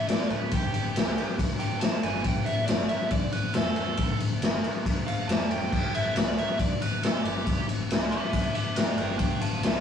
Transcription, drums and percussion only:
0.08 snare loud
0.08 ride medium
0.30 ride medium
0.51 kick loud
0.51 ride loud
0.74 ride medium
0.96 snare loud
0.96 ride loud
1.18 ride medium
1.39 kick loud
1.39 ride loud
1.60 ride medium
1.81 snare loud
1.81 ride loud
2.03 ride medium
2.24 kick medium
2.24 ride medium
2.46 ride medium
2.68 snare loud
2.68 ride loud
2.89 ride medium
3.11 kick loud
3.11 ride medium
3.32 ride medium
3.54 snare loud
3.54 ride loud
3.76 ride medium
3.97 kick loud
3.97 ride medium
4.20 ride medium
4.42 snare loud
4.42 ride loud
4.64 ride medium
4.86 kick loud
4.86 ride loud
5.08 ride medium
5.29 snare loud
5.29 ride loud
5.51 ride medium
5.72 kick loud
5.72 crash medium
5.95 ride medium
6.16 snare loud
6.16 ride loud
6.38 ride medium
6.59 kick loud
6.59 ride medium
6.82 ride medium
7.03 snare loud
7.03 ride loud
7.25 ride medium
7.46 kick loud
7.46 ride medium
7.69 ride medium
7.91 snare loud
7.91 ride loud
8.12 ride medium
8.33 kick medium
8.33 ride medium
8.55 ride medium
8.76 snare loud
8.76 ride loud
8.98 ride medium
9.19 kick loud
9.19 ride medium
9.41 ride medium
9.63 snare loud
9.63 ride loud

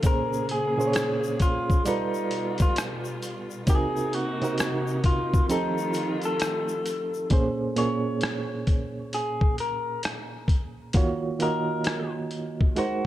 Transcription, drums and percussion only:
0.03 kick loud
0.03 closed hi-hat medium
0.03 shaker medium
0.33 shaker medium
0.49 closed hi-hat medium
0.80 shaker soft
0.93 cross-stick loud
0.93 closed hi-hat medium
0.93 shaker medium
1.24 shaker soft
1.40 kick medium
1.40 closed hi-hat medium
1.40 shaker soft
1.70 kick medium
1.70 shaker soft
1.86 closed hi-hat medium
1.86 shaker medium
2.14 shaker soft
2.31 closed hi-hat medium
2.58 kick medium
2.58 closed hi-hat soft
2.58 shaker soft
2.76 cross-stick loud
2.76 closed hi-hat medium
2.76 shaker medium
3.05 shaker soft
3.22 closed hi-hat medium
3.22 shaker medium
3.51 shaker soft
3.67 kick loud
3.67 closed hi-hat medium
3.67 shaker medium
3.97 shaker soft
4.13 closed hi-hat medium
4.42 closed hi-hat soft
4.42 shaker soft
4.58 cross-stick loud
4.58 closed hi-hat medium
4.58 shaker medium
4.87 shaker soft
5.04 kick medium
5.04 closed hi-hat medium
5.34 kick medium
5.34 shaker soft
5.49 closed hi-hat medium
5.49 shaker medium
5.78 shaker soft
5.93 closed hi-hat medium
5.93 shaker soft
6.22 closed hi-hat soft
6.22 shaker soft
6.40 cross-stick loud
6.40 closed hi-hat medium
6.40 shaker medium
6.68 shaker soft
6.86 closed hi-hat medium
6.86 shaker medium
7.14 shaker soft
7.30 kick loud
7.30 closed hi-hat medium
7.76 closed hi-hat medium
8.21 cross-stick loud
8.21 closed hi-hat medium
8.67 kick medium
8.67 closed hi-hat medium
9.13 closed hi-hat medium
9.41 kick medium
9.58 closed hi-hat medium
10.03 cross-stick loud
10.03 closed hi-hat medium
10.48 kick medium
10.48 closed hi-hat medium
10.93 kick loud
10.93 closed hi-hat medium
11.40 closed hi-hat medium
11.84 cross-stick loud
11.84 closed hi-hat medium
12.31 closed hi-hat medium
12.61 kick medium
12.76 closed hi-hat medium

